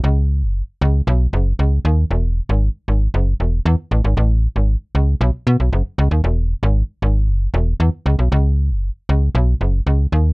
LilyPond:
\new Staff \with { instrumentName = "FM bass" } { \clef bass \time 4/4 \key e \major \tempo 4 = 116 cis,8. fis,,8 r16 cis,8 b,,8 fis,,8 cis,8 dis,8 | e,,8. gis,,8 r16 gis,,8 fis,,8 e,,8 e,16 r16 a,,16 gis,,16 | a,,8. gis,,8 r16 cis,8 b,,16 r16 b,16 b,,16 fis,,16 r16 cis,16 dis,16 | e,,8. gis,,8 r16 gis,,8 fis,,8 e,,8 e,16 r16 cis,16 b,,16 |
cis,8. fis,,8 r16 cis,8 b,,8 fis,,8 cis,8 dis,8 | }